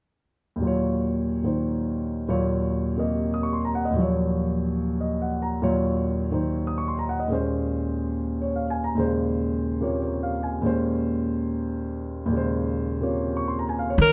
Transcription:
0.56 grand piano D#2 A#2
0.62 grand piano F#3 F4
0.67 grand piano C#5
1.43 grand piano A#2 D#3 D#4 C5
2.28 grand piano D#2 A#2 F#3 F4 C#5
2.97 grand piano C3 A#3 A#4 D#5
3.34 grand piano D#6
3.43 grand piano C#6
3.53 grand piano C6
3.65 grand piano A#5
3.75 grand piano F#5
3.85 grand piano D#5
3.91 grand piano D#2 A#2
3.96 grand piano F3 F#3
4.02 grand piano C#5
5.01 grand piano D#5
5.22 grand piano F#5
5.42 grand piano A#5
5.62 grand piano D#2 A#2 F#3 F4 C#5
6.31 grand piano A#2 D#3 D#4 C5
6.67 grand piano D#6
6.78 grand piano C#6
6.88 grand piano C6
6.99 grand piano A#5
7.09 grand piano F#5
7.20 grand piano D#5
7.28 grand piano D#2 A#2 G#3 C#4
7.33 grand piano C5
8.42 grand piano C#5
8.56 grand piano F5
8.70 grand piano G#5
8.84 grand piano A#5
8.95 grand piano D#2 A#2 C#3 G#3
9.00 grand piano C5
9.81 grand piano C3 A#3 F4 C#5
10.02 grand piano C#5
10.23 grand piano F5
10.43 grand piano G#5
10.61 grand piano D#2 A#2 G#3
10.65 grand piano C#4 C5
12.26 grand piano D#2 A#2
12.32 grand piano C#3 G#3
12.37 grand piano C5
13.01 grand piano C3 A#3 F4 C#5
13.37 grand piano C#6
13.48 grand piano C6
13.59 grand piano A#5
13.69 grand piano G#5
13.79 grand piano F5
13.90 grand piano C#5
13.98 upright bass D#3, alto saxophone A#4

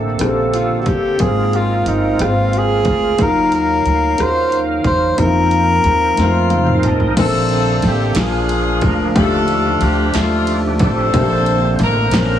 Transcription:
Already playing: upright bass A1, grand piano C3 A#3 C4 D4 A4, tonewheel organ D3 A#3 C4 A4, french horn section A#3 C4 D4 A4
0.19 upright bass A#1, grand piano A#3 C4 D4 G4, cross-stick, closed hi-hat
0.27 grand piano A4
0.54 tenor saxophone F4, closed hi-hat
0.82 tenor saxophone F#4 G4, closed hi-hat
0.86 upright bass G1, kick
1.19 upright bass G#1, tonewheel organ G#3 C4 F4 A4, french horn section G#3 F5, grand piano G#3 A#3 C4 F4 G#4, tenor saxophone G#4, kick, closed hi-hat
1.28 tonewheel organ A#4
1.53 tenor saxophone F4, closed hi-hat
1.86 upright bass G1, tenor saxophone D#4, closed hi-hat
2.19 upright bass G#1, grand piano A#3 B3 F4 G5, tenor saxophone F4, cross-stick, closed hi-hat
2.26 grand piano C4
2.53 closed hi-hat
2.58 tenor saxophone G#4
2.85 upright bass D2, kick, closed hi-hat
3.18 upright bass D#2, french horn section F#3 D#4, tonewheel organ F#3 D#4 A#4 F5, grand piano F#3 A#3 D#4 F4 F#4, kick, closed hi-hat
3.22 tenor saxophone A#4
3.52 tenor saxophone A#4, closed hi-hat
3.85 upright bass D2, closed hi-hat
4.18 upright bass D#2, grand piano A#3 D#4 F4 F#4, cross-stick, closed hi-hat
4.23 tenor saxophone C5
4.52 closed hi-hat
4.84 upright bass E2, tenor saxophone C5, kick, closed hi-hat
5.17 upright bass F2, tonewheel organ F3 C4 D#4 A#4, grand piano A#3 C4 D#4 E4, french horn section C4, tenor saxophone A#4, kick, closed hi-hat
5.26 grand piano F4
5.51 closed hi-hat
5.84 upright bass D#2, cross-stick, closed hi-hat
6.17 upright bass F2, grand piano A3 C4 D#4 F4, horn section A#3 C4 F4, snare, closed hi-hat
6.24 grand piano A#3
6.50 grand piano F5, tonewheel organ G5, closed hi-hat, high tom
6.67 tonewheel organ F5, mid tom
6.83 upright bass A1, tonewheel organ D#5, grand piano A5, closed hi-hat, mid tom
6.87 horn section A#4
7.00 floor tom
7.17 upright bass A#1, grand piano C3 A#3 C4 D4 A4, tonewheel organ C#3 A#3 C4 A4, horn section C4 D4 A4, kick, crash, ride
7.25 tonewheel organ D3
7.49 ride
7.82 upright bass A1, ride
7.86 horn section G4
8.15 upright bass A#1, grand piano A#2 A#3 D4 F4, tonewheel organ F3 A#3 D4 G#4, snare, clap, ride
8.19 horn section D4 F4 G#4, grand piano G#4
8.49 ride
8.81 upright bass D2, horn section A#4, kick, ride
9.15 upright bass D#2, grand piano D3 A3 D4 F4 G4, tonewheel organ F3 A3 D4 G4, horn section A4, kick, ride
9.19 horn section D4 F4
9.48 ride
9.81 upright bass D2, horn section G4, ride
10.14 upright bass D#2, grand piano A3 D4 F4 A4, snare, clap, ride
10.18 horn section F4
10.47 ride
10.79 upright bass A1, horn section C4 A4, kick, ride
10.84 horn section D4
11.14 upright bass A#1, grand piano C3 A#3 C4 D4 G4, tonewheel organ D3 A#3 C4 C5, kick, ride
11.22 grand piano A4
11.46 ride
11.79 upright bass A1, ride
11.84 horn section A#4
12.11 upright bass A#1, grand piano A#3 C4 C#4 A#4, snare, clap, ride
12.16 horn section D4 F4 A#4
12.21 grand piano D4

